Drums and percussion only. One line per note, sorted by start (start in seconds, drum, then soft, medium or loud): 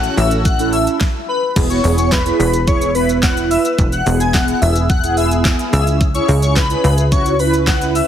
0.04 closed hi-hat medium
0.04 shaker medium
0.18 open hi-hat medium
0.18 shaker medium
0.31 closed hi-hat medium
0.31 shaker medium
0.45 kick loud
0.45 shaker medium
0.59 closed hi-hat medium
0.59 shaker medium
0.73 open hi-hat medium
0.73 shaker medium
0.87 closed hi-hat medium
0.87 shaker medium
1.01 kick loud
1.01 snare loud
1.56 kick loud
1.56 crash loud
1.56 shaker medium
1.70 closed hi-hat medium
1.70 shaker medium
1.84 open hi-hat medium
1.84 shaker medium
1.98 closed hi-hat medium
1.98 shaker medium
2.12 kick loud
2.12 snare loud
2.12 clap loud
2.12 shaker medium
2.26 closed hi-hat medium
2.26 shaker medium
2.40 open hi-hat medium
2.40 shaker medium
2.53 closed hi-hat medium
2.53 shaker medium
2.68 kick loud
2.68 shaker medium
2.82 closed hi-hat medium
2.82 shaker medium
2.95 open hi-hat medium
2.95 shaker medium
3.09 closed hi-hat medium
3.09 shaker medium
3.23 kick loud
3.23 snare loud
3.23 clap loud
3.23 shaker medium
3.37 closed hi-hat medium
3.37 shaker medium
3.51 open hi-hat medium
3.51 shaker medium
3.65 closed hi-hat medium
3.65 shaker medium
3.79 kick loud
3.79 shaker medium
3.92 closed hi-hat medium
3.92 shaker medium
4.06 open hi-hat medium
4.06 shaker medium
4.20 closed hi-hat medium
4.20 shaker medium
4.34 kick loud
4.34 snare loud
4.34 clap loud
4.34 shaker medium
4.48 closed hi-hat medium
4.48 shaker medium
4.62 open hi-hat medium
4.62 shaker medium
4.76 closed hi-hat medium
4.76 shaker medium
4.90 kick loud
4.90 shaker medium
5.04 closed hi-hat medium
5.04 shaker medium
5.17 open hi-hat medium
5.17 shaker medium
5.31 closed hi-hat medium
5.31 shaker medium
5.45 kick loud
5.45 snare loud
5.45 clap loud
5.45 shaker medium
5.59 closed hi-hat medium
5.59 shaker medium
5.73 open hi-hat medium
5.73 shaker medium
5.87 closed hi-hat medium
5.87 shaker medium
6.01 kick loud
6.01 shaker medium
6.15 closed hi-hat medium
6.15 shaker medium
6.28 open hi-hat medium
6.28 shaker medium
6.43 closed hi-hat medium
6.43 shaker medium
6.56 kick loud
6.56 snare loud
6.56 clap loud
6.56 shaker medium
6.70 closed hi-hat medium
6.70 shaker medium
6.84 open hi-hat medium
6.84 shaker medium
6.98 closed hi-hat medium
6.98 shaker medium
7.12 kick loud
7.12 shaker medium
7.26 closed hi-hat medium
7.26 shaker medium
7.39 open hi-hat medium
7.39 shaker medium
7.54 closed hi-hat medium
7.54 shaker medium
7.67 kick loud
7.67 snare loud
7.67 clap loud
7.67 shaker medium
7.81 closed hi-hat medium
7.81 shaker medium
7.95 open hi-hat medium
7.95 shaker medium